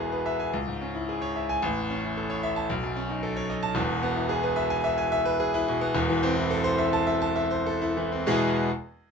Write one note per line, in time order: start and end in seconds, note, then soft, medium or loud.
0.00 0.50 E1 loud
0.00 0.50 E2 loud
0.00 0.56 B2 medium
0.00 0.56 B3 medium
0.00 0.56 E4 medium
0.00 0.20 G#4 medium
0.12 0.34 B4 medium
0.26 0.48 E5 loud
0.40 0.53 G#5 loud
0.53 1.59 C#2 loud
0.68 0.89 G#2 medium
0.81 1.03 C#4 medium
0.95 1.16 E4 medium
1.09 1.30 G#4 medium
1.22 1.44 C#5 medium
1.36 1.58 E5 medium
1.49 1.63 G#5 loud
1.62 2.66 A1 loud
1.77 1.98 E2 medium
1.90 2.11 C#4 medium
2.04 2.25 E4 medium
2.17 2.38 A4 medium
2.30 2.51 C#5 loud
2.43 2.64 E5 loud
2.56 2.70 A5 loud
2.70 3.74 B1 loud
2.83 3.04 F#2 medium
2.96 3.18 C#4 medium
3.10 3.31 D#4 medium
3.23 3.45 A4 medium
3.37 3.58 C#5 loud
3.50 3.71 D#5 loud
3.63 3.76 A5 loud
3.75 5.90 E1 loud
3.75 5.91 E2 loud
3.89 4.11 B2 medium
4.03 4.24 B3 loud
4.16 4.38 E4 medium
4.29 4.51 G#4 loud
4.43 4.65 B4 loud
4.56 4.78 E5 loud
4.70 4.92 G#5 loud
4.84 5.06 E5 loud
4.98 5.20 G#5 loud
5.12 5.34 E5 loud
5.25 5.48 B4 loud
5.40 5.62 G#4 loud
5.54 5.76 E4 loud
5.68 5.90 B2 loud
5.81 5.95 B3 loud
5.95 8.22 E1 loud
5.95 8.22 E2 loud
6.10 6.31 E3 loud
6.23 6.45 C4 loud
6.36 6.58 E4 loud
6.51 6.73 A4 loud
6.64 6.86 C5 loud
6.78 7.01 E5 loud
6.93 7.16 A5 loud
7.07 7.30 E5 loud
7.22 7.45 A5 loud
7.36 7.59 E5 loud
7.51 7.75 C5 loud
7.66 7.90 A4 loud
7.81 8.06 E4 loud
7.97 8.21 E3 medium
8.12 8.26 C4 medium
8.26 8.58 E2 loud
8.26 8.59 B2 loud
8.26 8.59 G#3 loud
8.26 8.59 B3 loud
8.26 8.59 E4 loud
8.26 8.59 G#4 loud